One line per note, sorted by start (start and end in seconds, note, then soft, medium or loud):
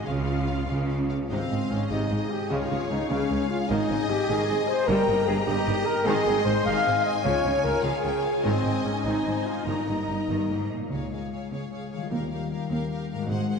0.00 0.68 G#4 soft
0.06 0.61 C#2 medium
0.06 1.32 C#3 medium
0.06 0.62 C#3 medium
0.06 1.11 F4 medium
0.06 0.14 F5 soft
0.06 1.00 F5 medium
0.27 1.09 C#4 soft
0.27 0.35 F5 soft
0.47 0.88 F4 soft
0.47 0.55 F5 soft
0.68 1.23 C#2 medium
0.68 1.24 C#3 medium
0.68 1.89 G#4 soft
0.68 0.76 F5 soft
0.89 1.32 F4 soft
0.89 0.97 F5 soft
1.09 1.32 C#4 soft
1.09 1.17 F5 soft
1.29 1.39 G#1 medium
1.29 2.52 G#2 medium
1.29 1.39 G#2 medium
1.29 1.49 C3 medium
1.29 1.67 C4 medium
1.29 1.68 C4 medium
1.29 3.66 G#4 medium
1.29 2.46 D#5 soft
1.29 1.86 F5 medium
1.50 1.58 G#1 soft
1.50 1.59 G#2 soft
1.50 1.59 G#3 soft
1.50 2.52 C4 soft
1.70 1.78 G#1 soft
1.70 1.79 G#2 soft
1.70 1.79 D#3 soft
1.70 1.90 C#4 medium
1.70 1.91 C#4 medium
1.70 2.52 D#4 soft
1.90 1.99 G#1 medium
1.90 1.99 G#2 medium
1.90 2.09 C3 medium
1.90 2.30 D#4 medium
1.90 2.29 G#4 medium
1.90 2.50 D#5 medium
2.10 2.18 G#1 soft
2.10 2.18 G#2 soft
2.10 2.19 G#3 soft
2.10 2.52 C5 soft
2.30 2.39 G4 medium
2.30 2.51 G4 medium
2.30 3.09 G#4 soft
2.49 2.59 C#2 medium
2.49 2.69 C#3 medium
2.49 3.71 C#3 medium
2.49 2.58 C#3 medium
2.49 2.89 F4 medium
2.49 2.91 F4 medium
2.49 3.69 C#5 medium
2.49 3.10 C#5 medium
2.49 3.67 F5 medium
2.70 2.78 C#2 medium
2.70 2.79 C#3 medium
2.70 2.78 G#3 soft
2.70 3.71 C#4 soft
2.89 2.98 C#2 medium
2.89 2.99 C#3 soft
2.89 2.98 F3 soft
2.89 4.89 G#3 medium
2.89 3.10 D#4 medium
3.09 3.18 C#2 medium
3.09 3.19 C#3 medium
3.09 3.29 C#3 medium
3.09 3.49 C#4 medium
3.09 3.50 C#4 medium
3.09 3.49 G#4 medium
3.09 3.69 F5 medium
3.30 3.38 C#2 medium
3.30 3.38 C#3 medium
3.30 3.38 G#3 soft
3.30 3.72 C#5 medium
3.49 3.69 F4 medium
3.49 3.58 F4 medium
3.49 4.28 G#4 medium
3.68 3.78 G#1 medium
3.68 4.90 G#2 medium
3.68 3.78 G#2 medium
3.68 3.88 D#3 medium
3.68 4.08 D#4 medium
3.68 4.86 G#4 medium
3.68 6.02 D#5 medium
3.68 4.88 D#5 medium
3.68 4.85 G#5 medium
3.89 3.97 G#1 medium
3.89 3.98 G#2 medium
3.89 3.98 C4 medium
3.89 4.90 C4 medium
4.09 4.17 G#1 medium
4.09 4.18 G#2 medium
4.09 4.18 G#3 medium
4.09 5.26 D#4 medium
4.09 4.28 G4 medium
4.09 4.29 G4 medium
4.29 4.36 G#1 medium
4.29 4.37 G#2 medium
4.29 4.47 D#3 medium
4.29 4.68 G#4 medium
4.29 4.67 G#4 medium
4.29 4.69 G#4 medium
4.48 4.57 G#1 medium
4.48 4.58 G#2 medium
4.48 4.57 C4 medium
4.48 4.89 C5 medium
4.67 4.89 G#4 medium
4.67 4.87 C5 loud
4.67 4.88 C5 medium
4.87 4.96 G1 medium
4.87 6.07 G2 medium
4.87 4.96 G2 medium
4.87 5.07 G3 medium
4.87 6.04 G4 medium
4.87 5.27 A#4 loud
4.87 5.27 A#4 medium
4.87 5.46 G5 medium
4.87 6.03 A#5 medium
5.08 5.15 G1 medium
5.08 5.17 G2 medium
5.08 6.07 A#3 medium
5.08 5.16 D#4 medium
5.26 5.35 G1 medium
5.26 5.35 G2 medium
5.26 5.36 A#3 medium
5.26 5.65 D#4 medium
5.26 5.46 G#4 loud
5.26 5.36 G#4 medium
5.47 5.55 G1 medium
5.47 5.55 G2 medium
5.47 5.66 G3 medium
5.47 5.85 G4 medium
5.47 5.85 A#4 medium
5.47 6.05 D#5 medium
5.66 5.75 G1 medium
5.66 5.75 G2 medium
5.66 6.44 D#4 medium
5.66 5.75 D#4 medium
5.86 6.06 A#4 medium
5.86 6.06 A#4 loud
5.86 6.07 A#4 medium
6.05 6.14 G#1 medium
6.05 6.14 G#2 medium
6.05 7.27 G#2 medium
6.05 6.24 D#3 loud
6.05 7.23 D#4 medium
6.05 6.45 G#4 loud
6.05 6.46 G#4 medium
6.05 7.22 D#5 medium
6.05 6.64 D#5 medium
6.05 7.25 C6 medium
6.26 6.34 G#1 medium
6.26 6.34 G#2 medium
6.26 7.27 C4 medium
6.26 6.34 C4 medium
6.45 6.54 G#1 medium
6.45 6.53 G#2 medium
6.45 6.54 G#3 soft
6.45 7.27 D#4 medium
6.45 6.65 C5 medium
6.65 6.74 G#1 medium
6.65 6.73 G#2 medium
6.65 6.84 D#3 medium
6.65 7.04 D#5 medium
6.65 7.04 F5 loud
6.65 7.04 F5 medium
6.65 7.83 G#5 medium
6.85 6.94 G#1 medium
6.85 6.93 G#2 medium
6.85 6.93 C4 medium
6.85 7.27 C5 medium
7.04 7.25 D#5 medium
7.04 7.14 D#5 medium
7.04 7.27 D#5 medium
7.24 7.32 C#2 medium
7.24 8.46 C#3 medium
7.24 7.33 C#3 medium
7.24 7.43 F3 medium
7.24 8.42 F4 medium
7.24 7.63 C#5 medium
7.24 8.42 C#5 medium
7.24 9.63 G#5 medium
7.44 7.52 C#2 medium
7.44 7.53 C#3 medium
7.44 8.46 C#4 medium
7.44 7.53 C#4 medium
7.63 7.72 C#2 medium
7.63 7.73 C#3 medium
7.63 7.72 G#3 medium
7.63 8.03 F4 medium
7.63 7.84 A#4 medium
7.83 7.92 C#2 medium
7.83 7.92 C#3 medium
7.83 8.03 F3 medium
7.83 8.44 G#4 medium
7.83 8.43 G#4 medium
7.83 8.23 C#5 medium
7.83 8.05 F5 medium
8.03 8.12 C#2 medium
8.03 8.13 C#3 medium
8.03 8.12 C#4 medium
8.03 8.46 F4 soft
8.03 8.23 G5 medium
8.23 8.44 F5 medium
8.43 8.52 G#1 medium
8.43 9.69 G#2 medium
8.43 8.53 G#2 medium
8.43 8.63 D#3 medium
8.43 8.84 C4 medium
8.43 10.71 D#4 medium
8.43 9.03 D#5 medium
8.43 10.67 D#5 medium
8.64 8.72 G#1 medium
8.64 8.73 G#2 medium
8.64 9.69 C4 soft
8.64 8.73 C4 soft
8.84 8.92 G#1 soft
8.84 8.94 G#2 soft
8.84 8.94 G#3 soft
8.84 9.05 C#4 medium
8.84 10.08 D#4 soft
9.04 9.12 G#1 medium
9.04 9.14 G#2 medium
9.04 9.25 D#3 medium
9.04 9.33 D#4 medium
9.04 9.45 D#4 medium
9.04 9.65 C5 medium
9.04 9.45 D#5 soft
9.24 9.32 G#1 soft
9.24 9.35 G#2 soft
9.24 9.35 C4 soft
9.24 9.68 C5 soft
9.46 9.66 F4 medium
9.46 9.67 F4 medium
9.46 10.28 D#5 soft
9.66 9.74 G1 medium
9.66 10.93 G2 soft
9.66 9.75 G2 medium
9.66 9.87 D#3 medium
9.66 10.69 D#4 medium
9.66 10.59 A#4 soft
9.66 10.71 A#5 soft
9.87 9.95 G1 soft
9.87 9.97 G2 soft
9.87 10.93 A#3 soft
9.87 9.96 A#3 soft
10.08 10.16 G1 soft
10.08 10.17 G2 soft
10.08 10.17 G3 soft
10.08 10.93 D#4 soft
10.29 10.37 G1 medium
10.29 10.49 G2 soft
10.29 10.49 D#3 medium
10.29 10.69 D#5 soft
10.49 10.57 G1 soft
10.49 10.71 G#2 medium
10.49 10.58 A#3 soft
10.49 10.93 A#4 soft
10.70 10.92 A#2 soft
10.70 12.04 C#3 soft
10.70 10.93 D#5 soft
10.78 12.07 G#3 soft
10.82 12.01 F4 soft
10.87 12.11 C#5 soft
10.91 11.29 C#2 soft
10.91 11.42 C#2 soft
10.91 11.11 G#4 soft
10.91 11.12 C#5 soft
10.91 11.11 F5 soft
11.12 11.31 G#4 soft
11.12 11.31 C#5 soft
11.12 11.31 F5 soft
11.32 11.52 G#4 soft
11.32 11.51 C#5 soft
11.32 11.50 F5 soft
11.51 12.03 C#2 soft
11.51 11.71 G#4 soft
11.51 11.71 C#5 soft
11.51 11.71 F5 soft
11.72 11.91 G#4 soft
11.72 11.90 C#5 soft
11.72 11.90 F5 soft
11.91 13.23 D#3 soft
11.91 12.12 G#4 soft
11.91 12.11 C#5 soft
11.91 12.09 F5 soft
11.98 13.26 G3 soft
12.03 13.28 F4 soft
12.07 13.30 A#4 soft
12.07 12.30 F5 soft
12.11 12.49 D#2 medium
12.11 12.62 D#2 soft
12.11 12.68 D#3 soft
12.11 12.31 G4 soft
12.11 12.30 A#4 soft
12.31 12.51 G4 soft
12.31 12.50 A#4 soft
12.31 12.50 F5 soft
12.51 12.71 G4 soft
12.51 12.70 A#4 soft
12.51 12.70 F5 soft
12.71 13.21 D#2 medium
12.71 12.91 G4 soft
12.71 12.90 A#4 soft
12.71 12.89 F5 soft
12.90 13.11 G4 soft
12.90 13.10 A#4 soft
12.90 13.10 F5 soft
13.11 13.59 G#2 soft
13.11 13.31 G4 soft
13.11 13.31 A#4 soft
13.11 13.30 F5 soft
13.17 13.59 G#3 soft
13.22 13.59 F#4 soft
13.26 13.59 C5 soft
13.26 13.48 C5 soft
13.26 13.49 F#5 soft
13.31 13.59 G#1 medium
13.31 13.59 G#2 medium
13.31 13.50 G#4 soft
13.49 13.59 G#4 soft
13.49 13.59 C5 soft
13.49 13.59 F#5 soft